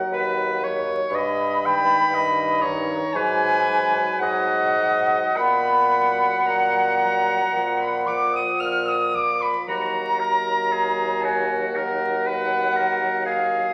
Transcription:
0.00 0.61 F#3 medium
0.00 0.60 F#5 medium
0.00 0.61 F#5 medium
0.12 1.00 D#2 medium
0.12 0.65 B4 medium
0.63 1.12 F#3 medium
0.63 1.16 C#5 medium
1.10 1.99 G2 loud
1.10 2.63 B5 loud
1.15 1.67 D#5 medium
1.65 2.62 D#3 medium
1.65 2.16 G5 medium
2.10 3.01 G2 medium
2.14 2.64 D#5 medium
2.61 3.14 D#3 medium
2.61 3.18 C#5 medium
2.61 3.15 A#5 medium
2.61 3.15 A#5 loud
3.13 4.08 G#2 medium
3.13 3.66 F#3 medium
3.13 4.21 B4 medium
3.13 4.19 G#5 loud
3.13 4.21 G#5 loud
3.69 4.76 F#3 medium
4.19 5.23 G#2 medium
4.19 5.38 D#5 medium
4.19 5.38 F#5 medium
4.19 5.38 F#5 loud
4.79 5.36 F#3 medium
5.36 6.34 A#2 medium
5.36 9.16 F#5 medium
5.36 6.48 B5 loud
5.36 6.45 B5 loud
5.92 6.97 F#3 medium
6.46 7.41 A#2 medium
6.46 7.50 A#5 medium
6.46 7.83 A#5 loud
7.00 7.53 F#3 medium
7.53 8.49 A#2 medium
7.53 8.07 F3 medium
7.80 8.08 B5 medium
7.80 8.09 B5 medium
8.07 9.13 F3 medium
8.07 8.34 D6 medium
8.07 8.35 D6 medium
8.33 8.62 D#6 medium
8.33 8.61 D#6 loud
8.60 9.55 A#2 medium
8.60 8.90 F6 medium
8.60 8.88 F6 medium
8.86 9.16 D#6 medium
8.86 9.17 D#6 loud
9.14 9.68 F3 medium
9.14 9.43 D6 medium
9.14 9.44 D6 loud
9.41 9.66 B5 medium
9.41 9.68 B5 medium
9.67 13.72 D#2 medium
9.67 11.71 F#3 medium
9.67 10.21 F#4 medium
9.67 11.24 A#5 medium
9.67 11.23 A#5 loud
10.19 10.74 A#4 medium
10.72 11.26 G#4 medium
11.21 11.78 F#4 medium
11.21 11.56 G#5 medium
11.74 13.72 F#3 medium
11.74 12.29 A#4 medium
11.74 13.27 F#5 loud
11.74 13.28 F#5 medium
12.27 12.78 B4 medium
12.77 13.25 A#4 medium
13.25 13.74 G#4 medium
13.25 13.74 F5 medium

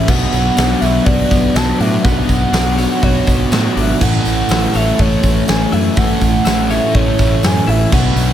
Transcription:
0.00 0.11 C#5 medium
0.00 0.10 E5 loud
0.07 0.24 B1 loud
0.07 0.85 B2 medium
0.07 0.84 F#3 loud
0.07 1.30 B3 medium
0.07 0.83 B3 loud
0.07 0.82 D4 loud
0.07 0.81 F#4 loud
0.07 0.82 F#5 loud
0.07 kick loud
0.07 crash loud
0.07 tambourine medium
0.32 0.49 B1 loud
0.32 open hi-hat medium
0.32 tambourine medium
0.57 0.73 B1 medium
0.57 1.77 D4 medium
0.57 snare loud
0.57 open hi-hat medium
0.57 tambourine loud
0.81 0.98 B1 medium
0.81 2.04 F#3 medium
0.81 2.04 B3 medium
0.81 2.03 D4 medium
0.81 2.03 F#4 medium
0.81 1.05 E5 loud
0.81 open hi-hat medium
0.81 tambourine medium
0.85 2.03 B2 medium
1.05 1.23 B1 medium
1.05 1.53 F#4 medium
1.05 1.57 D5 loud
1.05 kick loud
1.05 open hi-hat medium
1.31 1.47 B1 medium
1.31 2.03 B3 medium
1.31 kick medium
1.31 open hi-hat medium
1.31 tambourine medium
1.54 1.71 B1 medium
1.54 2.78 F#4 medium
1.54 1.82 A5 loud
1.54 snare loud
1.54 open hi-hat medium
1.54 tambourine loud
1.79 1.96 A2 loud
1.79 2.51 D4 medium
1.79 2.05 E5 loud
1.79 open hi-hat medium
2.04 2.21 B1 medium
2.04 2.77 B2 medium
2.04 2.77 F#3 medium
2.04 3.26 B3 medium
2.04 2.78 B3 loud
2.04 2.77 D4 medium
2.04 3.05 F#5 loud
2.04 kick loud
2.04 open hi-hat medium
2.04 tambourine medium
2.08 2.76 F#4 loud
2.29 2.45 B1 medium
2.29 kick medium
2.29 open hi-hat medium
2.29 tambourine medium
2.52 2.85 B1 medium
2.52 3.75 D4 medium
2.52 snare loud
2.52 open hi-hat medium
2.52 tambourine loud
2.77 4.00 B2 medium
2.77 4.00 F#3 medium
2.77 4.00 B3 medium
2.77 4.00 D4 medium
2.77 3.99 F#4 medium
2.77 4.51 C#5 medium
2.77 open hi-hat medium
2.77 tambourine medium
3.02 3.19 B1 loud
3.02 3.51 F#4 medium
3.02 3.52 C#5 loud
3.02 kick loud
3.02 open hi-hat medium
3.27 3.43 B1 medium
3.27 4.01 B3 medium
3.27 kick loud
3.27 open hi-hat medium
3.27 tambourine medium
3.51 3.67 A2 loud
3.51 4.01 F#4 medium
3.51 snare loud
3.51 open hi-hat medium
3.51 tambourine loud
3.76 3.92 G#1 loud
3.76 4.01 D4 medium
3.76 4.04 E5 medium
3.76 open hi-hat medium
4.00 4.17 A1 loud
4.00 4.77 A2 medium
4.00 4.76 E3 loud
4.00 4.75 A3 loud
4.00 4.74 C#4 loud
4.00 4.73 A4 medium
4.00 4.78 F#5 medium
4.00 kick loud
4.00 tambourine medium
4.00 crash loud
4.25 4.42 A1 medium
4.25 open hi-hat medium
4.25 tambourine medium
4.49 4.66 A1 medium
4.49 5.71 E4 medium
4.49 snare loud
4.49 open hi-hat medium
4.49 tambourine loud
4.73 4.91 A1 loud
4.73 5.95 A2 medium
4.73 5.96 E3 medium
4.73 5.96 A3 medium
4.73 5.99 C#4 medium
4.73 5.95 A4 medium
4.73 6.70 C#5 medium
4.73 5.02 E5 loud
4.73 open hi-hat medium
4.73 tambourine medium
4.99 5.15 A1 loud
4.99 5.49 C#5 medium
4.99 kick loud
4.99 open hi-hat medium
5.23 5.39 A1 medium
5.23 kick medium
5.23 open hi-hat medium
5.23 tambourine medium
5.48 5.64 A1 medium
5.48 5.75 G#5 loud
5.48 snare loud
5.48 open hi-hat medium
5.48 tambourine loud
5.72 5.88 F#2 loud
5.72 6.44 E4 medium
5.72 5.99 E5 medium
5.72 open hi-hat medium
5.96 6.13 A1 medium
5.96 6.68 A2 medium
5.96 6.69 E3 loud
5.96 6.69 A3 medium
5.96 6.70 C#4 medium
5.96 6.68 A4 loud
5.96 6.70 F#5 loud
5.96 kick loud
5.96 open hi-hat medium
5.96 tambourine medium
6.21 6.37 A1 medium
6.21 kick medium
6.21 open hi-hat medium
6.21 tambourine medium
6.45 6.78 A1 medium
6.45 7.66 E4 medium
6.45 snare loud
6.45 open hi-hat medium
6.45 tambourine loud
6.69 7.92 A2 medium
6.69 7.92 E3 medium
6.69 7.91 A3 medium
6.69 7.95 C#4 medium
6.69 7.90 A4 medium
6.69 7.96 C#5 medium
6.69 6.96 E5 loud
6.69 open hi-hat medium
6.69 tambourine medium
6.94 7.11 A1 loud
6.94 7.46 C#5 medium
6.94 kick loud
6.94 open hi-hat medium
7.18 7.35 A1 loud
7.18 kick medium
7.18 open hi-hat medium
7.18 tambourine medium
7.43 7.59 F#2 medium
7.43 7.70 G#5 loud
7.43 snare loud
7.43 open hi-hat medium
7.43 tambourine loud
7.67 7.83 A1 loud
7.67 7.92 E4 medium
7.67 7.93 E5 loud
7.67 open hi-hat medium
7.92 8.08 B1 medium
7.92 8.33 B2 loud
7.92 8.33 F#3 medium
7.92 8.33 B3 medium
7.92 8.33 B3 loud
7.92 8.33 D4 loud
7.92 8.33 F#4 loud
7.92 8.33 F#5 loud
7.92 kick loud
7.92 tambourine medium
7.92 crash loud
8.15 8.32 B1 loud
8.15 open hi-hat medium
8.15 tambourine medium

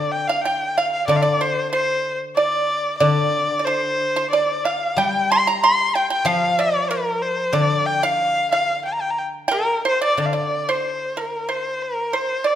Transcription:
0.00 1.07 D3 medium
0.00 0.13 D5 medium
0.00 0.24 D5 medium
0.11 0.29 G5 medium
0.27 0.43 F5 medium
0.27 0.44 F5 medium
0.41 0.79 G5 medium
0.41 0.75 G5 medium
0.77 0.91 F5 medium
0.77 1.07 F5 medium
0.92 1.07 F5 medium
1.07 2.99 D3 medium
1.07 1.18 D5 medium
1.07 1.21 D5 medium
1.16 1.23 F5 medium
1.22 1.44 D5 medium
1.22 1.40 D5 medium
1.41 1.71 C5 medium
1.71 2.17 C5 medium
1.71 2.18 C5 medium
2.35 2.96 D5 loud
2.35 2.97 D5 medium
2.98 4.98 D3 medium
2.98 3.66 D5 loud
2.98 3.55 D5 medium
3.59 3.66 D5 medium
3.65 4.30 C5 loud
3.65 4.13 C5 medium
4.16 4.32 C5 medium
4.30 4.66 D5 medium
4.30 4.64 D5 medium
4.64 4.99 F5 medium
4.64 4.96 F5 medium
4.97 6.91 G3 medium
4.97 5.34 G5 medium
4.97 5.29 G5 medium
5.32 5.47 C6 medium
5.32 5.49 C6 loud
5.47 5.62 A#5 medium
5.47 5.66 A#5 medium
5.64 5.93 C6 medium
5.64 5.97 C6 loud
5.95 6.09 G5 medium
5.95 6.12 G5 medium
6.10 6.26 G5 medium
6.10 6.29 G5 loud
6.25 8.18 F3 medium
6.25 6.56 F5 medium
6.25 6.61 F5 loud
6.59 6.89 D5 medium
6.59 6.92 D5 loud
6.91 7.24 A#4 medium
6.91 7.51 A#4 medium
7.22 7.55 C5 medium
7.53 9.50 D3 medium
7.53 7.99 D5 medium
7.53 7.87 D5 loud
7.86 8.04 G5 loud
8.03 8.51 F5 loud
8.03 8.49 F5 medium
8.51 8.82 F5 medium
8.51 8.83 F5 medium
8.85 8.95 G5 medium
8.93 9.03 A#5 medium
9.01 9.12 G5 medium
9.10 9.20 A#5 medium
9.18 9.20 G5 medium
9.48 9.83 A#4 medium
9.48 9.82 G5 loud
9.52 9.83 A#4 loud
9.85 10.01 C5 medium
9.85 10.03 C5 medium
10.02 10.17 D5 medium
10.02 10.18 D5 medium
10.17 12.13 D3 soft
10.17 10.32 D5 medium
10.21 10.27 D5 medium
10.26 10.35 F5 medium
10.33 10.66 D5 medium
10.33 10.72 D5 medium
10.69 11.14 C5 medium
10.69 11.18 C5 medium
11.17 11.53 A#4 medium
11.17 11.47 A#4 medium
11.49 12.10 C5 medium
11.49 11.84 C5 medium
11.82 12.17 A#4 medium
12.13 12.44 C5 medium
12.13 12.48 C5 medium
12.44 12.55 D5 medium

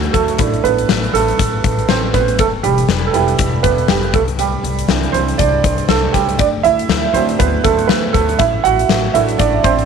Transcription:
0.00 0.42 F#3 medium
0.00 0.15 A3 medium
0.00 0.39 D4 soft
0.00 0.40 E4 soft
0.00 0.41 F#4 medium
0.00 0.13 A4 medium
0.00 closed hi-hat soft
0.13 0.35 D2 medium
0.13 0.37 A3 medium
0.13 0.65 A4 medium
0.13 kick medium
0.13 closed hi-hat medium
0.28 closed hi-hat soft
0.38 0.60 A1 medium
0.38 1.10 A3 soft
0.38 1.10 D4 soft
0.38 1.11 E4 soft
0.38 kick medium
0.38 closed hi-hat medium
0.54 closed hi-hat soft
0.64 0.84 A1 medium
0.64 1.11 B3 medium
0.64 1.15 B4 medium
0.64 closed hi-hat medium
0.79 closed hi-hat soft
0.89 1.09 A1 medium
0.89 snare medium
1.04 closed hi-hat soft
1.13 1.34 A1 medium
1.13 1.86 A3 medium
1.13 1.91 A4 medium
1.13 closed hi-hat medium
1.28 closed hi-hat soft
1.39 1.60 A1 medium
1.39 kick medium
1.39 closed hi-hat medium
1.64 1.85 A1 medium
1.64 kick medium
1.64 closed hi-hat medium
1.79 closed hi-hat soft
1.88 2.09 A1 medium
1.88 2.13 C4 medium
1.88 2.15 C5 medium
1.88 snare medium
2.14 2.39 A1 medium
2.14 2.38 B3 medium
2.14 2.37 B4 medium
2.14 kick medium
2.14 snare soft
2.14 closed hi-hat medium
2.28 closed hi-hat soft
2.39 2.59 E1 medium
2.39 2.46 A3 medium
2.39 2.45 A4 medium
2.39 kick medium
2.39 closed hi-hat medium
2.63 2.84 E1 medium
2.63 3.05 G3 medium
2.63 3.09 G4 medium
2.63 closed hi-hat medium
2.78 closed hi-hat soft
2.89 3.09 E1 medium
2.89 snare medium
3.07 3.14 A4 medium
3.13 3.35 E1 medium
3.13 3.61 G3 medium
3.13 3.63 B3 soft
3.13 3.86 E4 medium
3.13 3.65 G4 medium
3.13 closed hi-hat medium
3.28 closed hi-hat soft
3.39 3.60 E1 medium
3.39 kick medium
3.39 closed hi-hat medium
3.63 3.84 E1 medium
3.63 3.70 B3 medium
3.63 3.69 B4 medium
3.63 kick medium
3.63 closed hi-hat medium
3.78 closed hi-hat soft
3.88 4.10 E1 medium
3.88 4.13 G3 medium
3.88 4.15 G4 medium
3.88 snare medium
4.03 closed hi-hat soft
4.13 4.55 C2 medium
4.13 4.21 A3 medium
4.13 4.20 A4 medium
4.13 kick medium
4.13 closed hi-hat medium
4.28 closed hi-hat soft
4.39 5.11 G3 medium
4.39 5.10 G4 medium
4.39 closed hi-hat medium
4.64 4.84 C2 medium
4.64 closed hi-hat medium
4.79 closed hi-hat soft
4.88 5.09 C2 medium
4.88 5.23 E3 soft
4.88 5.13 C4 soft
4.88 5.24 D4 soft
4.88 snare medium
5.03 closed hi-hat soft
5.12 5.34 C2 medium
5.12 5.37 C4 medium
5.12 5.36 C5 medium
5.12 closed hi-hat medium
5.28 closed hi-hat soft
5.38 5.60 C2 medium
5.38 5.86 D4 medium
5.38 5.90 D5 medium
5.38 kick medium
5.38 closed hi-hat medium
5.64 5.84 C2 medium
5.64 kick medium
5.64 closed hi-hat medium
5.78 closed hi-hat soft
5.88 6.09 C2 medium
5.88 6.13 A3 medium
5.88 6.15 A4 medium
5.88 snare medium
6.13 6.35 C2 medium
6.13 6.37 G3 medium
6.13 6.37 G4 medium
6.13 kick medium
6.13 snare soft
6.13 closed hi-hat medium
6.29 closed hi-hat soft
6.39 6.60 D2 medium
6.39 6.46 D4 medium
6.39 6.44 D5 medium
6.39 kick loud
6.39 closed hi-hat medium
6.63 6.85 D2 medium
6.63 7.11 E4 medium
6.63 7.10 E5 medium
6.63 closed hi-hat medium
6.79 closed hi-hat soft
6.89 7.09 D2 medium
6.89 snare medium
7.14 7.34 D2 medium
7.14 7.48 F#3 soft
7.14 7.21 C4 medium
7.14 7.49 D4 soft
7.14 7.49 E4 soft
7.14 7.19 C5 medium
7.14 closed hi-hat medium
7.29 closed hi-hat soft
7.39 7.60 D2 medium
7.39 7.63 B3 medium
7.39 7.65 B4 medium
7.39 kick medium
7.39 closed hi-hat medium
7.64 7.85 D2 medium
7.64 7.88 A3 medium
7.64 7.90 A4 medium
7.64 kick medium
7.64 closed hi-hat medium
7.79 closed hi-hat soft
7.88 8.09 D2 medium
7.88 8.13 B3 medium
7.88 8.14 B4 medium
7.88 snare medium
8.13 8.35 D2 medium
8.13 8.20 A3 medium
8.13 8.19 A4 medium
8.13 kick medium
8.13 closed hi-hat medium
8.29 closed hi-hat soft
8.39 8.60 A1 medium
8.39 8.63 E4 medium
8.39 8.65 E5 medium
8.39 kick loud
8.39 closed hi-hat medium
8.64 8.85 A1 medium
8.64 9.11 F#4 medium
8.64 9.15 F#5 medium
8.64 closed hi-hat medium
8.79 closed hi-hat soft
8.89 9.10 A1 medium
8.89 snare medium
9.14 9.35 A1 medium
9.14 9.85 A3 soft
9.14 9.38 D4 soft
9.14 9.21 E4 medium
9.14 9.20 E5 medium
9.14 closed hi-hat medium
9.29 closed hi-hat soft
9.39 9.60 A1 medium
9.39 9.63 D4 medium
9.39 9.65 D5 medium
9.39 kick medium
9.39 closed hi-hat medium
9.64 9.85 A1 medium
9.64 9.85 C4 medium
9.64 9.85 C5 medium
9.64 kick medium
9.64 closed hi-hat medium
9.79 closed hi-hat soft

